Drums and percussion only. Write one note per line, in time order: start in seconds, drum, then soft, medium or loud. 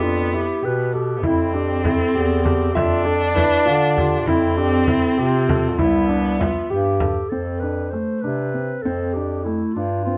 1.23 frame drum soft
1.85 frame drum medium
2.46 frame drum medium
2.77 frame drum medium
3.37 frame drum medium
3.98 frame drum medium
4.28 frame drum medium
4.88 frame drum medium
5.49 frame drum medium
5.79 frame drum medium
6.41 frame drum medium
6.71 frame drum soft
7.00 frame drum medium